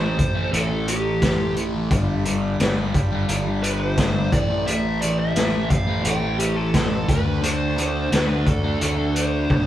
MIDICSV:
0, 0, Header, 1, 7, 480
1, 0, Start_track
1, 0, Key_signature, 0, "minor"
1, 0, Tempo, 689655
1, 1334, Time_signature, 4, 2, 24, 8
1, 6728, End_track
2, 0, Start_track
2, 0, Title_t, "Lead electric guitar"
2, 0, Program_c, 0, 29
2, 0, Note_on_c, 0, 72, 84
2, 365, Note_off_c, 0, 72, 0
2, 368, Note_on_c, 0, 69, 78
2, 611, Note_on_c, 0, 67, 68
2, 618, Note_off_c, 0, 69, 0
2, 1064, Note_off_c, 0, 67, 0
2, 2524, Note_on_c, 0, 71, 73
2, 2644, Note_off_c, 0, 71, 0
2, 2647, Note_on_c, 0, 72, 72
2, 3009, Note_on_c, 0, 74, 71
2, 3021, Note_off_c, 0, 72, 0
2, 3234, Note_off_c, 0, 74, 0
2, 3251, Note_on_c, 0, 76, 91
2, 3489, Note_off_c, 0, 76, 0
2, 3491, Note_on_c, 0, 74, 79
2, 3604, Note_off_c, 0, 74, 0
2, 3616, Note_on_c, 0, 76, 85
2, 3964, Note_off_c, 0, 76, 0
2, 3967, Note_on_c, 0, 77, 86
2, 4206, Note_on_c, 0, 79, 85
2, 4217, Note_off_c, 0, 77, 0
2, 4432, Note_off_c, 0, 79, 0
2, 4445, Note_on_c, 0, 67, 74
2, 4568, Note_off_c, 0, 67, 0
2, 4568, Note_on_c, 0, 69, 77
2, 4934, Note_on_c, 0, 71, 74
2, 4941, Note_off_c, 0, 69, 0
2, 5156, Note_off_c, 0, 71, 0
2, 5174, Note_on_c, 0, 72, 85
2, 5664, Note_off_c, 0, 72, 0
2, 5666, Note_on_c, 0, 71, 76
2, 5904, Note_on_c, 0, 69, 72
2, 5906, Note_off_c, 0, 71, 0
2, 6369, Note_on_c, 0, 72, 93
2, 6728, Note_off_c, 0, 69, 0
2, 6728, Note_off_c, 0, 72, 0
2, 6728, End_track
3, 0, Start_track
3, 0, Title_t, "Harmonium"
3, 0, Program_c, 1, 20
3, 0, Note_on_c, 1, 60, 67
3, 0, Note_on_c, 1, 64, 50
3, 0, Note_on_c, 1, 67, 49
3, 0, Note_on_c, 1, 69, 76
3, 1307, Note_off_c, 1, 60, 0
3, 1308, Note_off_c, 1, 69, 0
3, 1316, Note_off_c, 1, 64, 0
3, 1335, Note_on_c, 1, 65, 54
3, 1336, Note_on_c, 1, 83, 69
3, 1339, Note_on_c, 1, 62, 61
3, 2998, Note_off_c, 1, 65, 0
3, 2998, Note_off_c, 1, 83, 0
3, 3000, Note_off_c, 1, 62, 0
3, 3010, Note_on_c, 1, 60, 66
3, 3012, Note_on_c, 1, 52, 62
3, 3014, Note_on_c, 1, 69, 70
3, 4904, Note_off_c, 1, 67, 0
3, 4912, Note_off_c, 1, 52, 0
3, 4932, Note_on_c, 1, 62, 62
3, 4933, Note_on_c, 1, 66, 65
3, 6728, Note_off_c, 1, 60, 0
3, 6728, Note_off_c, 1, 62, 0
3, 6728, Note_off_c, 1, 66, 0
3, 6728, Note_off_c, 1, 69, 0
3, 6728, End_track
4, 0, Start_track
4, 0, Title_t, "Distorted electric guitar"
4, 0, Program_c, 2, 30
4, 0, Note_on_c, 2, 45, 72
4, 2, Note_on_c, 2, 57, 55
4, 14, Note_on_c, 2, 52, 54
4, 114, Note_off_c, 2, 45, 0
4, 116, Note_off_c, 2, 52, 0
4, 118, Note_off_c, 2, 57, 0
4, 239, Note_on_c, 2, 57, 74
4, 249, Note_on_c, 2, 52, 53
4, 474, Note_off_c, 2, 57, 0
4, 482, Note_on_c, 2, 57, 62
4, 486, Note_off_c, 2, 52, 0
4, 494, Note_on_c, 2, 52, 51
4, 838, Note_off_c, 2, 52, 0
4, 842, Note_on_c, 2, 45, 71
4, 846, Note_on_c, 2, 52, 72
4, 847, Note_off_c, 2, 57, 0
4, 855, Note_on_c, 2, 57, 78
4, 951, Note_off_c, 2, 57, 0
4, 959, Note_on_c, 2, 57, 61
4, 965, Note_off_c, 2, 52, 0
4, 973, Note_on_c, 2, 52, 52
4, 1070, Note_off_c, 2, 45, 0
4, 1078, Note_on_c, 2, 45, 64
4, 1081, Note_off_c, 2, 52, 0
4, 1085, Note_off_c, 2, 57, 0
4, 1089, Note_on_c, 2, 52, 59
4, 1093, Note_on_c, 2, 57, 62
4, 1199, Note_off_c, 2, 57, 0
4, 1207, Note_on_c, 2, 57, 66
4, 1212, Note_off_c, 2, 52, 0
4, 1221, Note_on_c, 2, 52, 58
4, 1312, Note_off_c, 2, 45, 0
4, 1316, Note_off_c, 2, 57, 0
4, 1321, Note_on_c, 2, 43, 72
4, 1323, Note_off_c, 2, 52, 0
4, 1327, Note_on_c, 2, 50, 91
4, 1334, Note_on_c, 2, 55, 90
4, 1555, Note_off_c, 2, 43, 0
4, 1561, Note_off_c, 2, 50, 0
4, 1563, Note_on_c, 2, 43, 69
4, 1569, Note_on_c, 2, 50, 71
4, 1573, Note_off_c, 2, 55, 0
4, 1576, Note_on_c, 2, 55, 76
4, 1800, Note_off_c, 2, 43, 0
4, 1807, Note_off_c, 2, 50, 0
4, 1808, Note_on_c, 2, 43, 83
4, 1815, Note_on_c, 2, 50, 84
4, 1818, Note_off_c, 2, 55, 0
4, 1821, Note_on_c, 2, 55, 83
4, 1921, Note_off_c, 2, 55, 0
4, 1929, Note_on_c, 2, 55, 63
4, 1933, Note_off_c, 2, 50, 0
4, 1941, Note_on_c, 2, 50, 50
4, 2042, Note_off_c, 2, 43, 0
4, 2043, Note_off_c, 2, 50, 0
4, 2044, Note_off_c, 2, 55, 0
4, 2167, Note_on_c, 2, 55, 69
4, 2180, Note_on_c, 2, 50, 49
4, 2394, Note_off_c, 2, 55, 0
4, 2403, Note_on_c, 2, 55, 59
4, 2408, Note_off_c, 2, 50, 0
4, 2417, Note_on_c, 2, 50, 44
4, 2761, Note_on_c, 2, 43, 82
4, 2762, Note_off_c, 2, 50, 0
4, 2765, Note_off_c, 2, 55, 0
4, 2771, Note_on_c, 2, 50, 83
4, 2773, Note_on_c, 2, 55, 82
4, 2875, Note_off_c, 2, 55, 0
4, 2884, Note_on_c, 2, 55, 60
4, 2892, Note_off_c, 2, 50, 0
4, 2900, Note_on_c, 2, 50, 50
4, 2993, Note_off_c, 2, 43, 0
4, 2994, Note_off_c, 2, 55, 0
4, 3002, Note_off_c, 2, 50, 0
4, 3006, Note_on_c, 2, 45, 81
4, 3017, Note_on_c, 2, 52, 75
4, 3020, Note_on_c, 2, 57, 79
4, 3125, Note_off_c, 2, 57, 0
4, 3128, Note_on_c, 2, 57, 66
4, 3135, Note_off_c, 2, 52, 0
4, 3143, Note_on_c, 2, 52, 50
4, 3243, Note_off_c, 2, 45, 0
4, 3250, Note_off_c, 2, 52, 0
4, 3251, Note_on_c, 2, 45, 81
4, 3259, Note_on_c, 2, 52, 89
4, 3262, Note_off_c, 2, 57, 0
4, 3265, Note_on_c, 2, 57, 86
4, 3483, Note_off_c, 2, 45, 0
4, 3491, Note_off_c, 2, 52, 0
4, 3492, Note_on_c, 2, 45, 67
4, 3499, Note_on_c, 2, 52, 70
4, 3501, Note_off_c, 2, 57, 0
4, 3503, Note_on_c, 2, 57, 68
4, 3720, Note_off_c, 2, 45, 0
4, 3727, Note_off_c, 2, 52, 0
4, 3728, Note_on_c, 2, 45, 80
4, 3735, Note_off_c, 2, 57, 0
4, 3736, Note_on_c, 2, 52, 89
4, 3738, Note_on_c, 2, 57, 87
4, 3843, Note_off_c, 2, 57, 0
4, 3846, Note_on_c, 2, 57, 60
4, 3853, Note_off_c, 2, 52, 0
4, 3861, Note_on_c, 2, 52, 51
4, 3962, Note_off_c, 2, 45, 0
4, 3964, Note_off_c, 2, 52, 0
4, 3973, Note_off_c, 2, 57, 0
4, 4084, Note_on_c, 2, 57, 62
4, 4098, Note_on_c, 2, 52, 59
4, 4311, Note_off_c, 2, 57, 0
4, 4320, Note_on_c, 2, 57, 61
4, 4323, Note_off_c, 2, 52, 0
4, 4332, Note_on_c, 2, 52, 48
4, 4680, Note_off_c, 2, 52, 0
4, 4682, Note_on_c, 2, 45, 78
4, 4686, Note_off_c, 2, 57, 0
4, 4688, Note_on_c, 2, 52, 81
4, 4694, Note_on_c, 2, 57, 83
4, 4793, Note_off_c, 2, 57, 0
4, 4801, Note_on_c, 2, 57, 62
4, 4811, Note_off_c, 2, 52, 0
4, 4819, Note_on_c, 2, 52, 54
4, 4912, Note_off_c, 2, 57, 0
4, 4913, Note_off_c, 2, 45, 0
4, 4921, Note_off_c, 2, 52, 0
4, 4924, Note_on_c, 2, 50, 74
4, 4930, Note_on_c, 2, 57, 86
4, 4936, Note_on_c, 2, 62, 81
4, 5035, Note_off_c, 2, 62, 0
4, 5044, Note_on_c, 2, 62, 67
4, 5050, Note_off_c, 2, 57, 0
4, 5058, Note_on_c, 2, 57, 49
4, 5156, Note_off_c, 2, 50, 0
4, 5160, Note_off_c, 2, 57, 0
4, 5164, Note_on_c, 2, 50, 84
4, 5169, Note_off_c, 2, 62, 0
4, 5169, Note_on_c, 2, 57, 94
4, 5177, Note_on_c, 2, 62, 103
4, 5395, Note_off_c, 2, 50, 0
4, 5403, Note_off_c, 2, 57, 0
4, 5404, Note_on_c, 2, 50, 68
4, 5409, Note_off_c, 2, 62, 0
4, 5411, Note_on_c, 2, 57, 68
4, 5418, Note_on_c, 2, 62, 75
4, 5633, Note_off_c, 2, 50, 0
4, 5640, Note_off_c, 2, 57, 0
4, 5641, Note_on_c, 2, 50, 77
4, 5645, Note_off_c, 2, 62, 0
4, 5649, Note_on_c, 2, 57, 87
4, 5654, Note_on_c, 2, 62, 91
4, 5758, Note_off_c, 2, 62, 0
4, 5767, Note_on_c, 2, 62, 62
4, 5771, Note_off_c, 2, 57, 0
4, 5780, Note_on_c, 2, 57, 46
4, 5881, Note_off_c, 2, 57, 0
4, 5882, Note_off_c, 2, 50, 0
4, 5888, Note_off_c, 2, 62, 0
4, 6012, Note_on_c, 2, 62, 71
4, 6022, Note_on_c, 2, 57, 55
4, 6240, Note_off_c, 2, 62, 0
4, 6248, Note_on_c, 2, 62, 68
4, 6254, Note_off_c, 2, 57, 0
4, 6262, Note_on_c, 2, 57, 50
4, 6608, Note_off_c, 2, 57, 0
4, 6609, Note_on_c, 2, 50, 85
4, 6614, Note_off_c, 2, 62, 0
4, 6617, Note_on_c, 2, 57, 81
4, 6623, Note_on_c, 2, 62, 80
4, 6720, Note_off_c, 2, 62, 0
4, 6728, Note_off_c, 2, 50, 0
4, 6728, Note_off_c, 2, 57, 0
4, 6728, End_track
5, 0, Start_track
5, 0, Title_t, "Fingered electric bass"
5, 0, Program_c, 3, 33
5, 0, Note_on_c, 3, 33, 70
5, 345, Note_off_c, 3, 33, 0
5, 370, Note_on_c, 3, 33, 80
5, 1304, Note_off_c, 3, 33, 0
5, 1330, Note_on_c, 3, 31, 77
5, 1784, Note_off_c, 3, 31, 0
5, 1809, Note_on_c, 3, 31, 73
5, 2264, Note_off_c, 3, 31, 0
5, 2291, Note_on_c, 3, 31, 80
5, 2984, Note_off_c, 3, 31, 0
5, 3011, Note_on_c, 3, 33, 85
5, 3704, Note_off_c, 3, 33, 0
5, 3732, Note_on_c, 3, 33, 78
5, 4185, Note_off_c, 3, 33, 0
5, 4210, Note_on_c, 3, 33, 83
5, 4903, Note_off_c, 3, 33, 0
5, 4931, Note_on_c, 3, 38, 92
5, 5623, Note_off_c, 3, 38, 0
5, 5658, Note_on_c, 3, 38, 83
5, 6106, Note_off_c, 3, 38, 0
5, 6139, Note_on_c, 3, 38, 75
5, 6587, Note_off_c, 3, 38, 0
5, 6615, Note_on_c, 3, 35, 67
5, 6728, Note_off_c, 3, 35, 0
5, 6728, End_track
6, 0, Start_track
6, 0, Title_t, "Muted distorted electric guitar strokes"
6, 123, Note_on_c, 9, 29, 36
6, 192, Note_off_c, 9, 29, 0
6, 2050, Note_on_c, 9, 29, 34
6, 2120, Note_off_c, 9, 29, 0
6, 3971, Note_on_c, 9, 29, 35
6, 4040, Note_off_c, 9, 29, 0
6, 5890, Note_on_c, 9, 29, 40
6, 5959, Note_off_c, 9, 29, 0
6, 6728, End_track
7, 0, Start_track
7, 0, Title_t, "Drums"
7, 131, Note_on_c, 9, 36, 74
7, 132, Note_on_c, 9, 42, 55
7, 201, Note_off_c, 9, 36, 0
7, 201, Note_off_c, 9, 42, 0
7, 372, Note_on_c, 9, 42, 67
7, 442, Note_off_c, 9, 42, 0
7, 610, Note_on_c, 9, 42, 58
7, 680, Note_off_c, 9, 42, 0
7, 849, Note_on_c, 9, 42, 67
7, 850, Note_on_c, 9, 36, 75
7, 857, Note_on_c, 9, 38, 92
7, 919, Note_off_c, 9, 36, 0
7, 919, Note_off_c, 9, 42, 0
7, 927, Note_off_c, 9, 38, 0
7, 1089, Note_on_c, 9, 42, 53
7, 1158, Note_off_c, 9, 42, 0
7, 1327, Note_on_c, 9, 42, 67
7, 1328, Note_on_c, 9, 36, 99
7, 1396, Note_off_c, 9, 42, 0
7, 1398, Note_off_c, 9, 36, 0
7, 1568, Note_on_c, 9, 42, 50
7, 1637, Note_off_c, 9, 42, 0
7, 1808, Note_on_c, 9, 42, 69
7, 1816, Note_on_c, 9, 38, 93
7, 1878, Note_off_c, 9, 42, 0
7, 1886, Note_off_c, 9, 38, 0
7, 2049, Note_on_c, 9, 36, 74
7, 2051, Note_on_c, 9, 42, 50
7, 2119, Note_off_c, 9, 36, 0
7, 2120, Note_off_c, 9, 42, 0
7, 2287, Note_on_c, 9, 42, 66
7, 2356, Note_off_c, 9, 42, 0
7, 2530, Note_on_c, 9, 42, 60
7, 2599, Note_off_c, 9, 42, 0
7, 2766, Note_on_c, 9, 42, 74
7, 2769, Note_on_c, 9, 36, 73
7, 2774, Note_on_c, 9, 38, 94
7, 2836, Note_off_c, 9, 42, 0
7, 2838, Note_off_c, 9, 36, 0
7, 2843, Note_off_c, 9, 38, 0
7, 3010, Note_on_c, 9, 36, 93
7, 3010, Note_on_c, 9, 42, 60
7, 3079, Note_off_c, 9, 36, 0
7, 3079, Note_off_c, 9, 42, 0
7, 3253, Note_on_c, 9, 42, 71
7, 3322, Note_off_c, 9, 42, 0
7, 3491, Note_on_c, 9, 42, 55
7, 3561, Note_off_c, 9, 42, 0
7, 3729, Note_on_c, 9, 42, 77
7, 3737, Note_on_c, 9, 38, 92
7, 3798, Note_off_c, 9, 42, 0
7, 3806, Note_off_c, 9, 38, 0
7, 3969, Note_on_c, 9, 42, 57
7, 3970, Note_on_c, 9, 36, 73
7, 4038, Note_off_c, 9, 42, 0
7, 4040, Note_off_c, 9, 36, 0
7, 4208, Note_on_c, 9, 42, 77
7, 4278, Note_off_c, 9, 42, 0
7, 4451, Note_on_c, 9, 42, 60
7, 4520, Note_off_c, 9, 42, 0
7, 4690, Note_on_c, 9, 42, 75
7, 4691, Note_on_c, 9, 36, 73
7, 4698, Note_on_c, 9, 38, 92
7, 4760, Note_off_c, 9, 42, 0
7, 4761, Note_off_c, 9, 36, 0
7, 4767, Note_off_c, 9, 38, 0
7, 4932, Note_on_c, 9, 36, 91
7, 4932, Note_on_c, 9, 42, 59
7, 5001, Note_off_c, 9, 36, 0
7, 5001, Note_off_c, 9, 42, 0
7, 5174, Note_on_c, 9, 42, 72
7, 5244, Note_off_c, 9, 42, 0
7, 5414, Note_on_c, 9, 42, 54
7, 5484, Note_off_c, 9, 42, 0
7, 5653, Note_on_c, 9, 42, 65
7, 5661, Note_on_c, 9, 38, 90
7, 5723, Note_off_c, 9, 42, 0
7, 5730, Note_off_c, 9, 38, 0
7, 5893, Note_on_c, 9, 36, 76
7, 5895, Note_on_c, 9, 42, 49
7, 5962, Note_off_c, 9, 36, 0
7, 5964, Note_off_c, 9, 42, 0
7, 6132, Note_on_c, 9, 42, 68
7, 6202, Note_off_c, 9, 42, 0
7, 6373, Note_on_c, 9, 42, 60
7, 6443, Note_off_c, 9, 42, 0
7, 6613, Note_on_c, 9, 36, 71
7, 6614, Note_on_c, 9, 48, 49
7, 6683, Note_off_c, 9, 36, 0
7, 6683, Note_off_c, 9, 48, 0
7, 6728, End_track
0, 0, End_of_file